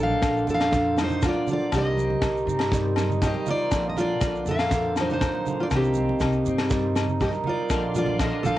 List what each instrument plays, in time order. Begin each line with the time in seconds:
Already playing: upright bass A#1, clean electric guitar A#2 D4, hammered dulcimer A#3 C4
0.00 hammered dulcimer D3, steel-string acoustic guitar A4 F5
0.10 high conga
0.22 upright bass A#1, hammered dulcimer D3, kick, snare, low agogo, shekere
0.36 hammered dulcimer D4, shekere
0.47 upright bass F2, hammered dulcimer D3, clean electric guitar D4, steel-string acoustic guitar A4, low conga, shekere
0.54 steel-string acoustic guitar F5
0.60 hammered dulcimer A#3, snare, low agogo, shekere
0.72 hammered dulcimer D3, clean electric guitar F3, kick, snare, shekere
0.86 hammered dulcimer C4
0.96 hammered dulcimer D3, steel-string acoustic guitar D#4, clean electric guitar F4, snare, high conga, low agogo, shekere
1.04 steel-string acoustic guitar C5
1.10 hammered dulcimer D4, low conga, shekere
1.22 hammered dulcimer D3, clean electric guitar D4, steel-string acoustic guitar F4, kick, snare, low agogo, shekere
1.28 steel-string acoustic guitar D5
1.34 hammered dulcimer A#3, high conga
1.47 hammered dulcimer D3, clean electric guitar F4, steel-string acoustic guitar F4, high conga, low conga, shekere
1.53 steel-string acoustic guitar D5
1.60 hammered dulcimer C4
1.72 upright bass C2, clean electric guitar C3, hammered dulcimer D#3, steel-string acoustic guitar G4, kick, snare, low agogo, shekere
1.78 steel-string acoustic guitar D#5
1.85 hammered dulcimer G3
1.97 hammered dulcimer D#3, clean electric guitar C4, high conga, shekere
2.10 high conga
2.22 upright bass C2, hammered dulcimer D#3, clean electric guitar D#4, kick, snare, low agogo, shekere
2.34 hammered dulcimer D#4, shekere
2.46 upright bass G2, hammered dulcimer D#3, clean electric guitar C4, low conga, shekere
2.59 hammered dulcimer G3, snare, low agogo, shekere
2.71 hammered dulcimer D#3, clean electric guitar G3, kick, snare, shekere
2.76 steel-string acoustic guitar D5
2.84 hammered dulcimer C4
2.96 hammered dulcimer D#3, clean electric guitar D#4, snare, high conga, low agogo, shekere
3.08 hammered dulcimer D#4, low conga, shekere
3.22 hammered dulcimer D#3, clean electric guitar C4, steel-string acoustic guitar G4, kick, snare, low agogo, shekere
3.27 steel-string acoustic guitar D#5
3.34 hammered dulcimer G3, high conga
3.46 hammered dulcimer D#3, clean electric guitar D#4, steel-string acoustic guitar F4, high conga, low conga, shekere
3.50 steel-string acoustic guitar D5
3.61 hammered dulcimer C4
3.71 upright bass A#1, clean electric guitar A#2, hammered dulcimer D3, kick, snare, low agogo, shekere
3.85 hammered dulcimer A#3
3.89 steel-string acoustic guitar D#5
3.96 hammered dulcimer D3, clean electric guitar D4, steel-string acoustic guitar F4, snare, high conga, shekere
4.00 steel-string acoustic guitar D5
4.20 upright bass A#1, hammered dulcimer D3, clean electric guitar F4, kick, snare, low agogo, shekere
4.35 hammered dulcimer D4, shekere
4.46 upright bass F2, hammered dulcimer D3, clean electric guitar D4, steel-string acoustic guitar A4, low conga, shekere
4.51 steel-string acoustic guitar F5
4.59 hammered dulcimer A#3, snare, low agogo, shekere
4.70 hammered dulcimer D3, clean electric guitar F3, kick, snare, shekere
4.85 hammered dulcimer C4
4.96 hammered dulcimer D3, steel-string acoustic guitar D#4, clean electric guitar F4, snare, high conga, low agogo, shekere
5.01 steel-string acoustic guitar C5
5.10 hammered dulcimer D4, steel-string acoustic guitar D#4 C5, low conga, shekere
5.21 hammered dulcimer D3, kick, snare, low agogo, shekere
5.34 hammered dulcimer A#3, high conga
5.46 hammered dulcimer D3, clean electric guitar F4, high conga, low conga, shekere
5.59 hammered dulcimer C4, steel-string acoustic guitar F4 D5
5.71 upright bass C2, clean electric guitar C3, hammered dulcimer D#3, kick, snare, low agogo, shekere
5.75 steel-string acoustic guitar C4 G4
5.84 hammered dulcimer G3, shekere
5.94 hammered dulcimer D#3, high conga, shekere
5.98 clean electric guitar C4
6.09 high conga
6.20 upright bass C2, hammered dulcimer D#3, kick, snare, low agogo, shekere
6.24 clean electric guitar D#4
6.33 hammered dulcimer D#4, shekere
6.46 upright bass G2, hammered dulcimer D#3, clean electric guitar C4, low conga, shekere
6.58 hammered dulcimer G3, snare, low agogo
6.70 hammered dulcimer D#3, clean electric guitar G3, kick, snare, shekere
6.85 hammered dulcimer C4
6.95 hammered dulcimer D#3, clean electric guitar D#4, snare, high conga, low agogo, shekere
7.08 hammered dulcimer D#4, low conga, shekere
7.20 hammered dulcimer D#3, steel-string acoustic guitar G4 D#5, muted clean electric guitar stroke, kick, snare, low agogo, shekere
7.33 hammered dulcimer G3, high conga, shekere
7.44 hammered dulcimer D#3, clean electric guitar D#4, steel-string acoustic guitar F4, high conga, low conga
7.49 steel-string acoustic guitar D5
7.60 hammered dulcimer C4
7.70 upright bass A#1, clean electric guitar A#2 A#4, hammered dulcimer D3, tonewheel organ D5 F5 C6, kick, snare, low agogo, shekere
7.85 hammered dulcimer A#3
7.95 hammered dulcimer D3, clean electric guitar F3, steel-string acoustic guitar F4 D5, shekere
8.06 upright bass A#1, high conga, low conga
8.19 hammered dulcimer D3, clean electric guitar D4, steel-string acoustic guitar A#4 D#5, kick, snare, low agogo, shekere
8.33 hammered dulcimer D4, clean electric guitar F4
8.43 upright bass A#1, hammered dulcimer D3, clean electric guitar F3, steel-string acoustic guitar A4 F5, low conga, shekere